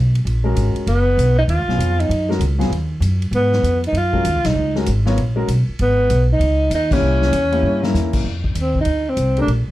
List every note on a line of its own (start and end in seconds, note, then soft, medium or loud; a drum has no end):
0.00 0.24 B1 medium
0.15 ride soft
0.25 0.54 A#1 medium
0.25 ride medium
0.44 0.84 G#3 medium
0.44 0.84 C#4 medium
0.44 0.84 F#4 medium
0.44 0.85 A#4 medium
0.55 0.73 G#1 medium
0.55 hi-hat pedal medium
0.55 ride medium
0.75 muted upright bass stroke soft
0.75 ride soft
0.87 1.16 F#1 medium
0.87 1.34 B3 loud
0.87 ride medium
1.17 1.47 B1 medium
1.17 hi-hat pedal medium
1.17 ride medium
1.38 1.43 D#4 loud
1.48 1.58 D#2 medium
1.48 2.02 F4 loud
1.48 ride medium
1.58 1.67 C#2 medium
1.68 1.77 B1 medium
1.68 2.08 F#3 medium
1.68 2.08 B3 medium
1.68 2.08 F4 medium
1.68 2.08 G#4 medium
1.68 snare soft
1.78 2.08 F2 medium
1.78 hi-hat pedal medium
1.78 ride medium
2.00 2.30 D#4 medium
2.00 ride medium
2.09 2.39 F#2 medium
2.09 ride medium
2.29 2.39 G#3 medium
2.29 2.39 C#4 medium
2.29 2.39 F#4 medium
2.29 2.40 A#4 medium
2.29 snare soft
2.39 2.69 C#2 medium
2.39 hi-hat pedal medium
2.39 ride medium
2.58 2.69 F#3 medium
2.58 2.69 B3 medium
2.58 2.69 F4 medium
2.58 2.70 G#4 medium
2.58 snare soft
2.58 ride medium
2.70 3.00 D#2 medium
2.70 ride medium
3.00 3.31 F#2 medium
3.00 hi-hat pedal medium
3.00 ride medium
3.22 ride soft
3.31 3.62 G#2 medium
3.31 3.81 B3 medium
3.31 ride medium
3.53 snare soft
3.63 3.92 F2 medium
3.63 hi-hat pedal medium
3.63 ride medium
3.84 3.99 D#4 loud
3.84 ride medium
3.92 4.23 F#2 medium
3.92 ride medium
3.98 4.47 F4 loud
4.13 4.23 G#3 medium
4.13 4.24 C#4 medium
4.13 4.24 F#4 medium
4.13 4.24 A#4 medium
4.13 kick soft
4.25 4.35 D#2 medium
4.25 hi-hat pedal medium
4.25 ride medium
4.35 4.44 C#2 medium
4.44 4.55 B1 medium
4.44 4.76 D#4 loud
4.44 snare medium
4.44 ride medium
4.55 4.85 C#2 medium
4.75 4.86 G#3 medium
4.75 4.86 C#4 medium
4.75 4.86 F#4 medium
4.75 4.86 A#4 medium
4.75 snare soft
4.86 5.17 G#1 medium
4.86 hi-hat pedal medium
4.86 ride medium
5.06 5.16 B3 medium
5.06 5.16 F4 medium
5.06 5.17 A#4 medium
5.06 5.16 C#5 medium
5.06 snare medium
5.18 5.47 A#1 medium
5.18 ride medium
5.36 5.46 G#3 medium
5.36 5.46 C#4 medium
5.36 5.46 F#4 medium
5.36 5.47 A#4 medium
5.48 5.66 B1 medium
5.48 hi-hat pedal medium
5.48 ride medium
5.69 muted upright bass stroke soft
5.79 6.09 G#1 medium
5.79 6.27 B3 medium
5.79 ride medium
6.10 6.39 B1 medium
6.10 hi-hat pedal medium
6.10 ride medium
6.33 6.70 D#4 loud
6.39 6.70 C#2 medium
6.39 ride medium
6.70 7.00 D#2 medium
6.70 hi-hat pedal medium
6.70 ride medium
6.75 6.95 D#4 loud
6.91 7.31 A#3 medium
6.91 7.31 C#4 medium
6.91 7.95 C#4 loud
6.91 7.32 E4 medium
6.91 7.32 G4 medium
6.91 kick medium
6.91 crash medium
7.01 7.31 C2 medium
7.22 snare medium
7.32 7.62 E2 loud
7.32 hi-hat pedal medium
7.32 ride medium
7.52 7.81 A#3 medium
7.52 7.81 C#4 medium
7.52 7.81 E4 medium
7.52 7.81 G4 medium
7.52 ride medium
7.63 7.93 G2 medium
7.82 8.23 A#3 medium
7.82 8.22 C#4 medium
7.82 8.23 E4 medium
7.82 8.23 A#4 medium
7.82 snare medium
7.94 8.23 E2 medium
7.94 snare medium
7.94 hi-hat pedal medium
8.13 kick medium
8.13 crash medium
8.24 8.54 F2 medium
8.44 kick medium
8.55 8.85 D#2 medium
8.55 hi-hat pedal medium
8.55 ride medium
8.62 8.77 C4 medium
8.75 kick medium
8.80 9.11 D#4 loud
8.85 9.16 D2 medium
8.85 ride medium
9.09 9.38 C4 medium
9.17 9.46 C2 medium
9.17 hi-hat pedal medium
9.17 ride medium
9.37 9.48 A3 medium
9.37 9.47 D4 medium
9.37 9.47 G4 medium
9.37 9.48 A#4 medium
9.37 ride soft
9.41 9.50 D4 medium
9.46 9.65 A#1 medium
9.46 ride medium
9.68 muted upright bass stroke soft